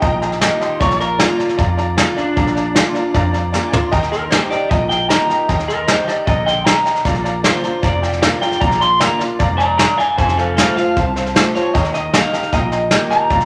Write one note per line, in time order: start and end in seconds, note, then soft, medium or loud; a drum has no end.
0.00 0.43 A#1 medium
0.00 0.76 A#2 medium
0.00 0.14 D#5 loud
0.00 0.38 G5 loud
0.00 0.14 G5 loud
0.00 0.15 A#5 loud
0.00 kick loud
0.00 snare soft
0.21 0.34 D#5 medium
0.21 0.34 G5 medium
0.21 0.34 A#5 loud
0.21 snare soft
0.32 snare soft
0.41 0.79 D#3 medium
0.41 0.79 A#3 medium
0.41 0.79 D#4 medium
0.41 0.79 G4 loud
0.41 0.53 D#5 medium
0.41 0.54 G5 medium
0.41 0.54 A#5 loud
0.41 snare loud
0.41 hi-hat pedal medium
0.60 0.73 D#5 loud
0.60 0.73 G5 medium
0.60 0.74 C6 loud
0.60 muted upright bass stroke medium
0.60 snare soft
0.80 1.22 A#1 loud
0.80 1.55 A#2 medium
0.80 1.00 C#5 loud
0.80 0.92 D5 loud
0.80 0.92 F5 medium
0.80 0.93 A#5 loud
0.80 kick loud
0.80 snare soft
0.91 snare soft
1.00 1.19 A#4 loud
1.00 1.12 D5 medium
1.00 1.12 F5 medium
1.00 1.12 A#5 medium
1.00 snare soft
1.18 1.57 D3 medium
1.18 1.57 A#3 medium
1.18 1.57 D4 medium
1.18 1.77 F4 medium
1.18 1.58 F4 loud
1.18 1.31 D5 medium
1.18 1.31 F5 medium
1.18 1.32 A#5 medium
1.18 snare loud
1.18 hi-hat pedal medium
1.39 1.51 D5 medium
1.39 1.51 F5 medium
1.39 1.52 A#5 medium
1.39 muted upright bass stroke medium
1.39 snare soft
1.49 snare soft
1.57 2.00 F2 medium
1.57 2.33 F2 medium
1.57 1.70 D5 loud
1.57 1.70 F5 medium
1.57 1.71 A#5 loud
1.57 kick loud
1.57 snare soft
1.77 1.90 D5 medium
1.77 1.90 F5 medium
1.77 1.90 A#5 loud
1.77 snare soft
1.97 2.16 D3 medium
1.97 2.17 A#3 medium
1.97 2.17 D4 medium
1.97 2.17 F4 medium
1.97 2.16 F4 loud
1.97 2.09 D5 medium
1.97 2.09 F5 medium
1.97 2.10 A#5 medium
1.97 snare loud
1.97 hi-hat pedal medium
2.17 3.31 D4 loud
2.17 2.37 D4 soft
2.17 2.36 F4 medium
2.17 2.29 D5 medium
2.17 2.29 F5 medium
2.17 2.29 A#5 medium
2.17 muted upright bass stroke medium
2.17 snare soft
2.36 2.78 A#1 loud
2.36 3.11 A#2 medium
2.36 2.48 D5 loud
2.36 2.49 F5 medium
2.36 2.49 A#5 loud
2.36 kick loud
2.36 snare soft
2.47 snare soft
2.55 2.68 D5 medium
2.55 2.68 F5 medium
2.55 2.68 A#5 medium
2.55 snare soft
2.75 2.94 D3 medium
2.75 2.95 A#3 medium
2.75 2.95 D4 medium
2.75 2.94 F4 loud
2.75 2.87 D5 medium
2.75 2.88 F5 medium
2.75 2.88 C6 loud
2.75 snare loud
2.75 hi-hat pedal medium
2.94 3.15 D4 medium
2.94 3.14 F4 medium
2.94 3.07 D5 medium
2.94 3.07 F5 medium
2.94 3.07 A#5 loud
2.94 muted upright bass stroke medium
2.94 snare soft
3.14 3.56 F2 medium
3.14 3.89 F2 medium
3.14 3.26 D5 loud
3.14 3.27 F5 loud
3.14 3.27 A#5 loud
3.14 kick loud
3.14 snare soft
3.33 3.45 D5 medium
3.33 3.46 F5 medium
3.33 3.46 A#5 loud
3.33 snare soft
3.52 3.72 D3 medium
3.52 3.73 A#3 medium
3.52 3.73 D4 medium
3.52 3.71 F4 loud
3.52 3.65 D5 medium
3.52 3.65 F5 medium
3.52 3.72 G#5 medium
3.52 3.66 A#5 loud
3.52 snare medium
3.52 hi-hat pedal medium
3.72 3.93 D4 soft
3.72 3.92 F4 medium
3.72 3.85 D5 medium
3.72 3.85 F5 medium
3.72 3.91 A#5 medium
3.72 3.85 C6 loud
3.72 muted upright bass stroke medium
3.72 floor tom loud
3.92 4.34 D#2 medium
3.92 4.29 D#3 medium
3.92 4.04 D#5 loud
3.92 4.04 G5 loud
3.92 4.05 A#5 loud
3.92 kick loud
3.92 snare soft
4.03 snare soft
4.11 4.30 A#4 loud
4.11 4.24 D#5 medium
4.11 4.24 G5 medium
4.11 4.24 C6 medium
4.11 snare soft
4.30 4.50 D#3 medium
4.30 4.50 A#3 medium
4.30 4.51 D#4 medium
4.30 4.49 G4 loud
4.30 4.50 C5 medium
4.30 4.43 D#5 medium
4.30 4.44 G5 medium
4.30 4.44 A#5 medium
4.30 snare loud
4.30 hi-hat pedal medium
4.50 4.71 D#4 medium
4.50 4.70 G4 medium
4.50 4.69 D5 medium
4.50 4.63 D#5 medium
4.50 4.63 G5 medium
4.50 4.64 A#5 medium
4.50 muted upright bass stroke medium
4.50 snare soft
4.69 5.12 A#1 medium
4.69 5.45 A#2 loud
4.69 4.89 D#5 medium
4.69 4.83 D#5 medium
4.69 4.83 G5 medium
4.69 4.83 A#5 loud
4.69 kick loud
4.69 snare soft
4.89 5.02 D#5 medium
4.89 5.09 G5 loud
4.89 5.02 G5 medium
4.89 5.03 A#5 medium
4.89 snare soft
5.09 5.29 D#3 medium
5.09 5.29 A#3 medium
5.09 5.29 D#4 medium
5.09 5.28 G4 loud
5.09 5.21 D#5 medium
5.09 5.22 G5 medium
5.09 5.48 A#5 loud
5.09 5.22 A#5 medium
5.09 snare loud
5.09 hi-hat pedal medium
5.29 5.49 D#4 medium
5.29 5.48 G4 medium
5.29 5.41 D#5 medium
5.29 5.41 G5 medium
5.29 5.42 A#5 medium
5.29 muted upright bass stroke medium
5.29 snare soft
5.49 5.90 D#2 loud
5.49 5.61 D#5 loud
5.49 5.61 G5 medium
5.49 5.61 A#5 loud
5.49 kick loud
5.49 snare soft
5.59 snare soft
5.68 5.88 A#4 loud
5.68 5.80 D#5 medium
5.68 5.81 G5 medium
5.68 5.81 C6 medium
5.68 snare soft
5.87 6.07 D#3 medium
5.87 6.07 A#3 medium
5.87 6.07 D#4 loud
5.87 6.06 G4 medium
5.87 6.08 C5 medium
5.87 6.00 D#5 medium
5.87 6.00 G5 medium
5.87 6.00 A#5 medium
5.87 snare loud
5.87 hi-hat pedal medium
6.07 6.27 D#4 medium
6.07 6.26 G4 medium
6.07 6.27 D5 medium
6.07 6.19 D#5 medium
6.07 6.20 G5 medium
6.07 6.20 A#5 medium
6.07 muted upright bass stroke medium
6.07 snare soft
6.27 6.69 A#1 medium
6.27 6.65 D3 medium
6.27 6.46 D#5 loud
6.27 6.39 D#5 medium
6.27 6.39 G5 medium
6.27 6.40 A#5 loud
6.27 kick loud
6.27 snare soft
6.46 6.58 D#5 medium
6.46 6.65 G5 loud
6.46 6.59 G5 medium
6.46 6.59 C6 medium
6.46 snare soft
6.65 7.04 C3 medium
6.65 6.78 D#5 medium
6.65 6.79 G5 medium
6.65 7.04 A#5 medium
6.65 6.79 A#5 medium
6.65 snare loud
6.65 hi-hat pedal medium
6.85 6.97 D#5 medium
6.85 6.98 G5 medium
6.85 6.98 A#5 medium
6.85 muted upright bass stroke medium
6.85 snare soft
6.96 snare soft
7.05 7.46 A#1 loud
7.05 7.80 A#2 medium
7.05 7.17 D5 loud
7.05 7.17 F5 medium
7.05 7.18 A#5 loud
7.05 kick loud
7.05 snare soft
7.15 snare soft
7.24 7.36 D5 medium
7.24 7.37 F5 medium
7.24 7.37 A#5 loud
7.24 snare soft
7.43 7.63 D3 medium
7.43 7.64 A#3 medium
7.43 7.64 D4 medium
7.43 7.62 F4 loud
7.43 7.83 C5 loud
7.43 7.56 D5 medium
7.43 7.56 F5 medium
7.43 7.57 A#5 medium
7.43 snare loud
7.43 hi-hat pedal medium
7.63 7.84 D4 medium
7.63 7.83 F4 medium
7.63 7.75 D5 medium
7.63 7.76 F5 medium
7.63 7.76 A#5 medium
7.63 muted upright bass stroke medium
7.63 snare soft
7.82 8.24 F1 medium
7.82 8.58 F2 loud
7.82 7.95 D5 loud
7.82 8.22 D5 loud
7.82 7.95 F5 medium
7.82 7.96 A#5 loud
7.82 kick loud
7.82 snare soft
8.01 8.14 D5 medium
8.01 8.14 F5 medium
8.01 8.15 G5 medium
8.01 snare soft
8.13 snare soft
8.21 8.42 D3 medium
8.21 8.42 A#3 medium
8.21 8.42 D4 medium
8.21 8.34 D5 medium
8.21 8.34 F5 medium
8.21 8.41 F5 loud
8.21 8.35 A#5 medium
8.21 snare loud
8.21 hi-hat pedal medium
8.25 8.41 F4 loud
8.41 8.62 D4 medium
8.41 8.61 F4 medium
8.41 8.53 D5 medium
8.41 8.54 F5 medium
8.41 8.61 G5 loud
8.41 8.54 A#5 medium
8.41 muted upright bass stroke medium
8.41 snare soft
8.52 snare soft
8.60 9.03 A#1 loud
8.60 9.36 A#2 medium
8.60 8.73 D5 loud
8.60 8.73 F5 loud
8.60 8.80 A#5 loud
8.60 8.74 A#5 loud
8.60 kick loud
8.60 snare soft
8.71 snare soft
8.80 8.93 D5 medium
8.80 8.93 F5 medium
8.80 8.93 A#5 medium
8.80 9.00 C6 loud
8.80 snare soft
9.00 9.20 D3 medium
9.00 9.20 A#3 medium
9.00 9.20 D4 loud
9.00 9.19 F4 medium
9.00 9.12 D5 medium
9.00 9.12 F5 medium
9.00 9.20 A#5 loud
9.00 9.13 A#5 medium
9.00 snare loud
9.00 hi-hat pedal medium
9.19 9.40 D4 medium
9.19 9.39 F4 medium
9.19 9.32 D5 medium
9.19 9.32 F5 medium
9.19 9.33 C6 medium
9.19 muted upright bass stroke medium
9.19 snare soft
9.39 9.81 F1 medium
9.39 9.77 G#2 medium
9.39 9.51 D5 loud
9.39 9.52 F5 loud
9.39 9.52 A#5 loud
9.39 kick loud
9.39 snare soft
9.57 9.76 D5 medium
9.57 9.71 D5 medium
9.57 9.72 F5 medium
9.57 9.77 A#5 loud
9.57 9.72 A#5 medium
9.57 snare soft
9.78 9.97 D5 medium
9.78 9.91 D5 medium
9.78 9.91 F5 medium
9.78 9.98 A#5 medium
9.78 9.91 A#5 medium
9.78 snare loud
9.78 hi-hat pedal medium
9.97 10.10 D5 medium
9.97 10.16 F5 medium
9.97 10.10 F5 medium
9.97 10.17 G#5 loud
9.97 10.11 A#5 medium
9.97 muted upright bass stroke medium
9.97 snare soft
10.17 10.59 F1 loud
10.17 10.93 F2 medium
10.17 10.36 C5 medium
10.17 10.30 C5 loud
10.17 10.30 F5 loud
10.17 10.38 G#5 loud
10.17 10.30 A5 loud
10.17 kick loud
10.17 snare soft
10.29 snare soft
10.37 10.55 A4 medium
10.37 10.50 C5 medium
10.37 10.57 F5 medium
10.37 10.50 F5 medium
10.37 10.50 A5 medium
10.37 snare soft
10.57 10.76 F3 medium
10.57 10.77 A3 medium
10.57 10.77 C4 loud
10.57 10.76 F4 medium
10.57 10.75 A4 medium
10.57 10.69 C5 medium
10.57 10.70 F5 medium
10.57 10.76 F5 medium
10.57 10.70 A5 medium
10.57 snare loud
10.57 hi-hat pedal medium
10.76 10.97 C4 medium
10.76 10.96 F4 medium
10.76 10.88 C5 medium
10.76 10.96 F5 loud
10.76 10.89 F5 medium
10.76 10.89 A5 medium
10.76 muted upright bass stroke medium
10.76 snare soft
10.96 11.38 C2 medium
10.96 11.71 C3 medium
10.96 11.08 C5 medium
10.96 11.09 F5 medium
10.96 11.09 A5 loud
10.96 kick loud
10.96 snare soft
11.16 11.28 C5 medium
11.16 11.28 F5 medium
11.16 11.29 A5 medium
11.16 snare soft
11.26 snare soft
11.35 11.54 F3 medium
11.35 11.55 A3 medium
11.35 11.55 C4 medium
11.35 11.54 F4 loud
11.35 11.47 C5 medium
11.35 11.47 F5 medium
11.35 snare loud
11.35 hi-hat pedal medium
11.54 11.75 C4 medium
11.54 11.74 F4 medium
11.54 11.66 C5 medium
11.54 11.93 C#5 loud
11.54 11.67 F5 medium
11.54 11.67 A5 medium
11.54 muted upright bass stroke medium
11.54 snare soft
11.74 12.16 D#2 loud
11.74 12.13 D#3 medium
11.74 11.86 D#5 loud
11.74 11.87 G5 medium
11.74 11.87 A#5 loud
11.74 kick loud
11.74 snare soft
11.85 snare soft
11.94 12.06 D#5 medium
11.94 12.13 D#5 loud
11.94 12.06 G5 medium
11.94 12.07 A#5 medium
11.94 snare soft
12.13 12.33 D#3 medium
12.13 12.33 A#3 medium
12.13 12.34 D#4 loud
12.13 12.32 G4 loud
12.13 12.25 D#5 medium
12.13 12.52 F5 loud
12.13 12.26 G5 medium
12.13 12.26 A#5 medium
12.13 snare loud
12.13 hi-hat pedal medium
12.33 12.53 D#4 medium
12.33 12.52 G4 medium
12.33 12.45 D#5 medium
12.33 12.46 G5 medium
12.33 12.46 A#5 medium
12.33 muted upright bass stroke medium
12.33 snare soft
12.43 snare soft
12.52 12.94 A#1 medium
12.52 13.28 A#2 medium
12.52 12.64 D#5 loud
12.52 12.91 D#5 loud
12.52 12.65 G5 medium
12.52 12.65 A#5 loud
12.52 kick loud
12.52 snare soft
12.72 12.84 D#5 medium
12.72 12.84 G5 medium
12.72 12.85 A#5 medium
12.72 snare soft
12.91 13.29 D#3 medium
12.91 13.29 A#3 medium
12.91 13.30 D#4 loud
12.91 13.30 G4 medium
12.91 13.03 D#5 medium
12.91 13.04 G5 medium
12.91 13.04 A#5 medium
12.91 snare loud
12.91 hi-hat pedal medium
13.11 13.23 D#5 medium
13.11 13.23 G5 medium
13.11 13.45 A#5 loud
13.11 13.24 A#5 medium
13.11 muted upright bass stroke medium
13.11 snare soft
13.30 13.45 A#1 medium
13.30 13.45 A#2 medium
13.30 13.42 D5 loud
13.30 13.43 F5 loud
13.30 13.43 A#5 loud
13.30 kick loud
13.30 snare soft
13.40 snare soft